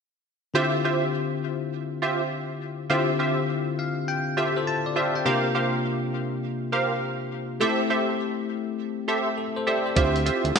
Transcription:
0.54 2.86 D3 medium
0.54 2.86 C4 medium
0.54 2.87 E4 medium
0.54 0.74 F4 loud
0.54 2.87 F4 medium
0.54 0.75 G4 medium
0.54 2.87 G4 medium
0.54 0.75 C5 medium
0.54 0.75 E5 loud
0.85 1.04 F4 medium
0.85 1.04 G4 medium
0.85 1.04 C5 medium
0.85 1.04 E5 medium
2.02 2.22 F4 medium
2.02 2.22 G4 medium
2.02 2.22 C5 medium
2.02 2.22 E5 medium
2.89 5.21 D3 medium
2.89 5.22 C4 medium
2.89 4.35 E4 medium
2.89 3.10 F4 loud
2.89 4.35 F4 medium
2.89 3.10 G4 medium
2.89 4.35 G4 medium
2.89 3.10 C5 medium
2.89 3.10 E5 medium
3.19 3.39 F4 medium
3.19 3.39 G4 medium
3.19 3.39 C5 medium
3.19 3.39 E5 medium
3.79 4.06 F5 medium
4.08 4.36 G5 medium
4.37 4.57 F4 medium
4.37 4.56 F4 medium
4.37 4.57 G4 medium
4.37 4.56 A4 medium
4.37 4.57 C5 medium
4.37 4.57 E5 medium
4.57 4.85 A4 medium
4.57 4.85 C5 medium
4.67 5.22 A5 medium
4.86 4.96 D5 medium
4.96 5.16 F4 medium
4.96 5.16 G4 medium
4.96 5.16 C5 medium
4.96 5.15 D5 medium
4.96 5.16 E5 medium
4.96 5.14 F5 medium
5.15 5.44 E5 medium
5.15 5.43 G5 medium
5.25 7.57 C3 medium
5.25 7.57 A#3 medium
5.25 7.58 D4 medium
5.25 7.58 F4 medium
5.25 5.45 G4 medium
5.25 7.58 G4 medium
5.25 5.45 A#4 medium
5.25 5.45 C5 medium
5.25 5.45 F5 loud
5.55 5.74 G4 medium
5.55 5.74 A#4 medium
5.55 5.75 C5 medium
5.55 5.75 F5 medium
6.72 6.92 G4 medium
6.72 6.92 A#4 medium
6.72 6.92 C5 medium
6.72 6.92 F5 medium
7.60 9.92 A3 medium
7.60 9.92 C4 medium
7.60 9.93 E4 medium
7.60 7.80 G4 medium
7.60 9.93 G4 medium
7.60 7.80 A4 medium
7.60 7.80 C5 medium
7.60 7.81 E5 loud
7.90 8.10 G4 medium
7.90 8.10 A4 medium
7.90 8.10 C5 medium
7.90 8.10 E5 medium
9.08 9.27 G4 medium
9.08 9.28 A4 medium
9.08 9.28 C5 medium
9.08 9.28 E5 medium
9.37 9.56 A4 medium
9.56 9.67 A4 medium
9.56 9.67 C5 medium
9.67 9.86 G4 medium
9.67 9.86 A4 medium
9.67 9.87 C5 medium
9.67 9.85 D5 medium
9.67 9.87 E5 medium
9.86 10.14 A4 soft
9.86 10.14 C5 medium
9.95 10.30 D2 loud
9.95 10.59 C4 medium
9.95 10.59 E4 medium
9.95 10.16 F4 medium
9.95 10.59 F4 medium
9.95 10.16 G4 medium
9.95 10.59 G4 medium
9.95 10.16 C5 medium
9.95 10.16 E5 loud
9.95 kick loud
9.95 closed hi-hat medium
10.16 closed hi-hat soft
10.26 10.45 F4 medium
10.26 10.45 G4 medium
10.26 10.45 C5 medium
10.26 10.46 E5 medium
10.26 closed hi-hat medium
10.44 10.52 D2 medium
10.44 closed hi-hat soft
10.56 snare loud
10.56 closed hi-hat medium

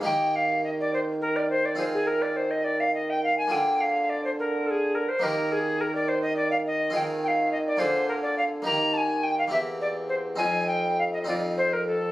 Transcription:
0.01 1.73 A#3 soft
0.01 1.74 D#4 soft
0.01 1.75 G4 soft
0.05 3.48 D#3 medium
0.05 3.48 D#3 soft
0.05 0.37 G5 medium
0.36 0.64 F5 medium
0.64 0.70 D#5 medium
0.81 0.93 D5 medium
0.94 1.00 C5 medium
1.21 1.38 A#4 medium
1.36 1.50 D5 medium
1.50 1.67 C5 medium
1.66 1.78 D5 medium
1.75 3.46 C4 soft
1.75 3.47 F4 soft
1.75 3.48 G#4 soft
1.75 1.85 C5 medium
1.94 2.08 G#4 medium
2.07 2.24 A#4 medium
2.22 2.38 D5 medium
2.37 2.52 C5 medium
2.51 2.66 D#5 medium
2.64 2.82 D5 medium
2.80 2.94 F5 medium
2.95 3.11 D#5 medium
3.10 3.23 G5 medium
3.24 3.37 F5 medium
3.38 3.53 G#5 medium
3.47 5.17 A#3 soft
3.47 5.18 F4 soft
3.47 5.19 G#4 soft
3.52 5.07 D3 medium
3.52 5.19 D3 soft
3.52 3.82 G5 medium
3.81 4.11 F5 medium
4.10 4.24 D5 medium
4.24 4.30 C5 medium
4.39 4.68 A#4 medium
4.66 4.72 A4 medium
4.71 4.96 G#4 medium
4.95 5.10 A#4 medium
5.09 5.25 C5 medium
5.19 6.89 A#3 soft
5.19 6.90 D#4 soft
5.19 6.91 G4 soft
5.24 6.92 D#3 medium
5.24 6.91 D#3 soft
5.24 5.54 A#4 medium
5.52 5.82 G#4 medium
5.81 5.94 A#4 medium
5.95 6.10 D5 medium
6.09 6.22 C5 medium
6.22 6.36 D#5 medium
6.36 6.51 D5 medium
6.51 6.57 F5 medium
6.67 6.95 D#5 medium
6.90 7.76 C4 soft
6.90 7.77 F4 soft
6.90 7.78 G#4 soft
6.94 7.77 D#3 soft
6.94 7.77 D#3 medium
6.94 7.02 G5 medium
7.24 7.51 F5 medium
7.24 7.29 G5 medium
7.52 7.58 D#5 medium
7.67 7.81 D5 medium
7.77 8.65 D3 medium
7.77 8.61 A#3 soft
7.77 8.63 F4 soft
7.77 8.64 G#4 soft
7.77 8.08 C5 medium
7.82 8.63 D3 medium
8.09 8.15 A#4 medium
8.22 8.37 D5 medium
8.38 8.44 F5 medium
8.62 9.47 A#3 soft
8.62 9.49 D#4 soft
8.62 9.50 G4 soft
8.62 8.95 A#5 medium
8.67 9.51 D#3 medium
8.67 9.49 D#3 soft
8.94 8.99 A5 medium
8.98 9.25 G#5 medium
9.23 9.38 G5 medium
9.39 9.45 F5 medium
9.48 10.35 A#3 soft
9.48 10.34 C4 soft
9.48 10.36 G4 soft
9.52 10.36 E2 soft
9.52 10.38 E2 medium
9.52 9.59 E5 medium
9.81 9.88 D5 medium
10.09 10.16 C5 medium
10.36 11.23 C4 soft
10.36 11.24 D#4 soft
10.36 11.24 F4 soft
10.36 10.66 G#5 medium
10.40 11.24 F2 soft
10.40 11.26 F2 medium
10.67 10.97 G5 medium
10.99 11.05 F5 medium
11.13 11.19 D#5 medium
11.24 12.12 F2 medium
11.24 12.12 C4 soft
11.24 12.12 D#4 soft
11.24 12.12 F4 soft
11.24 11.34 D5 medium
11.29 12.12 F2 soft
11.57 11.75 C5 medium
11.73 11.86 A#4 medium
11.87 12.12 A4 medium

